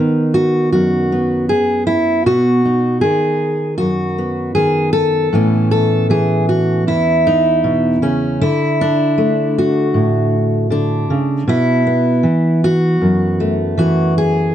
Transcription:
0.00 1.51 D#3 medium
0.00 1.12 B3 soft
0.00 1.12 D#4 loud
0.34 0.71 F#4 medium
0.72 2.22 F#2 medium
0.72 1.49 F#4 medium
1.12 4.18 B3 soft
1.49 1.86 G#4 medium
1.87 2.26 E4 medium
2.26 3.03 B2 medium
2.26 3.01 F#4 loud
2.65 5.30 D#4 soft
3.01 4.55 D#3 medium
3.01 3.77 G#4 medium
3.78 5.30 F#2 medium
3.78 4.54 F#4 medium
4.18 5.30 B3 soft
4.55 5.29 D#3 medium
4.55 4.92 G#4 medium
4.93 5.70 A4 loud
5.33 6.88 A2 medium
5.33 6.09 E3 soft
5.33 8.38 B3 soft
5.33 7.26 C#4 medium
5.71 6.10 A4 loud
6.10 8.41 E3 medium
6.10 6.48 G#4 medium
6.49 6.87 F#4 medium
6.87 8.42 E2 medium
6.87 8.04 E4 medium
7.27 8.02 D#4 medium
7.64 8.02 B2 medium
8.02 8.42 C#3 medium
8.02 8.42 C#4 medium
8.41 10.69 D3 medium
8.41 9.57 E4 loud
8.81 10.35 D4 loud
9.18 11.51 A3 medium
9.58 11.11 F#4 medium
9.94 11.10 A2 medium
10.70 11.10 D3 medium
10.70 11.49 D4 medium
11.10 11.47 C#3 medium
11.48 12.25 B2 medium
11.48 12.64 E4 loud
11.87 14.55 B3 medium
12.23 13.77 E3 medium
12.64 13.77 F#4 loud
13.01 14.51 F#2 medium
13.40 14.51 A3 soft
13.78 14.55 E3 medium
13.78 14.17 F#4 medium
14.18 14.55 G#4 loud

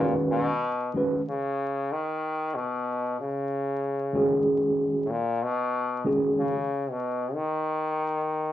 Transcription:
0.00 0.14 A#2 medium
0.00 0.46 D#3 medium
0.00 0.46 G#3 medium
0.00 0.46 C#4 medium
0.00 0.47 F#4 medium
0.00 0.47 B4 medium
0.31 0.91 B2 loud
0.93 1.19 D#3 medium
0.93 1.19 G#3 medium
0.93 1.20 C#4 medium
0.93 1.20 F#4 medium
0.93 1.21 B4 medium
1.29 1.93 C#3 loud
1.92 2.57 D#3 loud
2.55 3.19 B2 medium
3.20 4.43 C#3 medium
4.13 5.04 D#3 medium
4.13 5.05 G#3 medium
4.13 5.05 C#4 medium
4.13 5.06 F#4 medium
4.13 5.06 G#4 medium
5.06 5.12 A2 medium
5.10 5.44 A#2 loud
5.43 6.06 B2 loud
6.04 6.52 D#3 medium
6.04 6.53 G#3 medium
6.04 6.53 C#4 medium
6.04 6.54 F#4 medium
6.04 6.54 G#4 medium
6.39 6.92 C#3 medium
6.90 7.36 B2 medium
7.34 8.53 D#3 medium

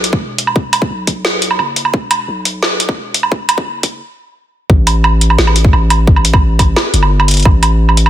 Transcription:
0.00 0.20 B1 loud
0.00 closed hi-hat medium
0.13 kick loud
0.21 0.89 E1 medium
0.38 closed hi-hat medium
0.47 low woodblock soft
0.56 kick loud
0.73 closed hi-hat medium
0.73 low woodblock medium
0.82 kick medium
0.90 1.58 B1 loud
1.07 kick medium
1.07 closed hi-hat medium
1.25 snare loud
1.42 closed hi-hat medium
1.51 low woodblock medium
1.59 1.92 F#1 loud
1.59 low woodblock soft
1.76 closed hi-hat medium
1.85 low woodblock medium
1.94 2.27 E1 loud
1.94 kick loud
2.11 closed hi-hat medium
2.11 low woodblock medium
2.28 2.96 B1 loud
2.45 closed hi-hat medium
2.63 snare loud
2.80 closed hi-hat medium
2.89 kick loud
2.97 3.65 E1 medium
3.14 closed hi-hat medium
3.23 low woodblock medium
3.32 kick loud
3.49 closed hi-hat medium
3.49 low woodblock medium
3.58 kick loud
3.66 4.01 F#1 loud
3.83 kick medium
3.83 closed hi-hat medium
4.70 5.37 A1 medium
4.70 kick loud
4.87 closed hi-hat medium
4.87 low woodblock medium
5.04 low woodblock medium
5.21 closed hi-hat medium
5.30 low woodblock medium
5.38 5.72 A1 loud
5.38 snare loud
5.47 low woodblock medium
5.56 closed hi-hat medium
5.65 kick loud
5.73 6.75 A1 medium
5.73 low woodblock medium
5.90 closed hi-hat medium
5.90 low woodblock medium
6.07 kick loud
6.16 low woodblock medium
6.25 closed hi-hat medium
6.33 kick loud
6.33 low woodblock medium
6.59 kick medium
6.59 closed hi-hat medium
6.59 low woodblock medium
6.76 snare loud
6.76 low woodblock medium
6.94 7.44 G1 loud
6.94 closed hi-hat medium
7.03 low woodblock medium
7.20 low woodblock medium
7.28 closed hi-hat medium
7.31 closed hi-hat medium
7.34 closed hi-hat soft
7.37 closed hi-hat soft
7.40 closed hi-hat soft
7.43 8.10 A1 loud
7.43 kick loud
7.43 closed hi-hat soft
7.43 low woodblock medium
7.63 closed hi-hat medium
7.63 low woodblock medium
7.89 low woodblock soft
7.97 closed hi-hat medium
8.06 low woodblock medium

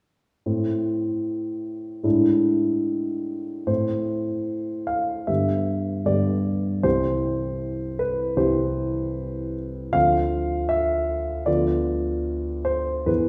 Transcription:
0.46 2.00 A2 soft
0.46 2.00 A3 soft
0.46 2.00 C4 soft
0.46 2.01 E4 soft
2.03 3.65 A2 soft
2.03 3.64 G#3 soft
2.03 3.65 D4 soft
2.03 3.65 E4 soft
3.67 5.24 A2 soft
3.67 5.24 A3 soft
3.67 5.24 C4 soft
3.67 5.24 E4 soft
3.67 4.88 C5 medium
4.87 5.28 F5 medium
5.27 6.04 G2 soft
5.27 6.04 D3 soft
5.27 6.03 B3 soft
5.27 6.04 G4 soft
5.27 6.06 E5 soft
6.05 6.82 G2 soft
6.05 6.82 D3 soft
6.05 6.82 B3 soft
6.05 6.82 G4 soft
6.05 6.84 D5 medium
6.83 8.34 C2 soft
6.83 8.34 E3 soft
6.83 8.35 C4 soft
6.83 8.35 G4 soft
6.83 8.00 C5 medium
7.99 8.38 B4 medium
8.37 9.90 C2 soft
8.37 9.90 E3 soft
8.37 9.90 C4 soft
8.37 9.91 G4 soft
8.37 9.55 C5 medium
9.92 11.42 D2 soft
9.92 11.42 F3 soft
9.92 11.43 C4 soft
9.92 11.43 F4 soft
9.92 10.70 F5 medium
10.69 11.46 E5 medium
11.46 13.04 D2 soft
11.46 13.05 F3 soft
11.46 13.05 B3 soft
11.46 13.05 F4 soft
11.46 12.67 D5 medium
12.65 13.07 C5 medium
13.06 13.29 E2 soft
13.06 13.29 E3 soft
13.06 13.29 B3 soft
13.06 13.29 G#4 soft
13.06 13.29 B4 medium

